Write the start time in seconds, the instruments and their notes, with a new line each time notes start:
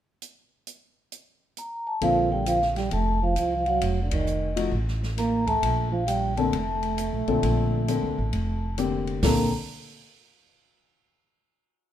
0.22 closed hi-hat
0.67 closed hi-hat
1.12 closed hi-hat
1.57 vibraphone A#5, closed hi-hat
1.87 vibraphone A5
2.01 upright bass A#1, grand piano D3 A#3 C4 A4, trombone F3, vibraphone F5, kick, ride
2.32 trombone G3, vibraphone G5
2.46 trombone F3, vibraphone F5, hi-hat pedal, ride
2.62 snare
2.76 trombone G3, vibraphone G5, snare, ride
2.91 upright bass F1, trombone A3, vibraphone A5, kick, ride
3.22 trombone F3, vibraphone F5
3.36 upright bass C2, trombone F3, vibraphone F5, hi-hat pedal, ride
3.57 trombone F3, vibraphone F5
3.66 trombone F#3, vibraphone F#5, ride
3.81 upright bass F1, kick, ride
4.02 trombone D3, vibraphone D5
4.11 trombone D#3, vibraphone D#5, kick, ride
4.27 hi-hat pedal
4.56 grand piano F3 A3 D#4 F#4, ride
4.72 upright bass A1, kick
4.88 snare
5.03 snare
5.18 trombone A#3, vibraphone A#5, snare, hi-hat pedal, ride
5.46 trombone A3, vibraphone A5, kick, ride
5.63 upright bass A#1, kick, ride
5.92 trombone F3, vibraphone F5
6.07 trombone G3, vibraphone G5, hi-hat pedal, ride
6.37 grand piano D3 A#3 C4 A4, trombone A3, vibraphone A5, ride
6.53 upright bass F1, kick, ride
6.83 ride
6.98 hi-hat pedal, ride
7.13 upright bass A#1
7.28 upright bass B1, grand piano A#2 D3 C4 A4, ride
7.43 upright bass A#1, kick, ride
7.88 grand piano D3 A#3 C4 A4, hi-hat pedal, ride
8.03 upright bass C2
8.18 upright bass A1
8.33 upright bass F1, kick, ride
8.78 grand piano D3 A#3 C4 G4, hi-hat pedal, ride
9.07 ride
9.23 upright bass A#1, grand piano D3 A#3 C4 A4, trombone A#3, vibraphone A#5, kick, snare, open hi-hat